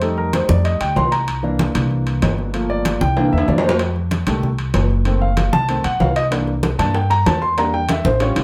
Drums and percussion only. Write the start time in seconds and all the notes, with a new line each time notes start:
0.02 high conga, high timbale
0.18 high conga
0.33 high conga, high timbale, low timbale
0.49 high conga
0.65 high conga, high timbale
0.81 high conga, high timbale
0.96 high conga, low timbale
1.12 high conga, high timbale
1.28 high conga, high timbale
1.44 high conga
1.59 high conga, high timbale, low timbale
1.75 high conga, low conga, high timbale
1.91 high conga
2.06 high conga, high timbale
2.22 high conga, high timbale, low timbale
2.38 high conga
2.54 high conga, high timbale
2.70 high conga
2.85 high conga, high timbale, low timbale
3.01 high conga
3.17 high conga, high timbale
3.33 high conga
3.38 high timbale
3.48 high conga, low timbale
3.58 low timbale
3.64 high conga
3.69 low timbale
3.79 high conga, high timbale
3.96 high conga
4.11 high conga, high timbale, low timbale
4.27 high conga, low conga, high timbale
4.43 high conga, low conga
4.58 high conga, high timbale
4.74 high conga, high timbale, low timbale
4.91 high conga
5.05 high conga, high timbale
5.22 high conga
5.37 high conga, high timbale, low timbale
5.53 high conga
5.69 high conga, high timbale
5.84 high conga, high timbale
6.00 high conga, low timbale
6.16 high conga, high timbale
6.32 high bongo, high conga, high timbale
6.47 high bongo, high conga
6.63 high bongo, high conga, high timbale, low timbale
6.79 high conga, low conga, high timbale
6.95 high bongo, high conga
7.11 high bongo, high conga, high timbale
7.26 high bongo, low bongo, high conga, high timbale, low timbale
7.42 high bongo, high conga
7.58 high bongo, high conga, high timbale
7.74 high bongo, high conga
7.89 high bongo, high conga, high timbale, low timbale
8.05 high bongo, high conga
8.20 high bongo, high conga, high timbale
8.36 low bongo, high conga, high timbale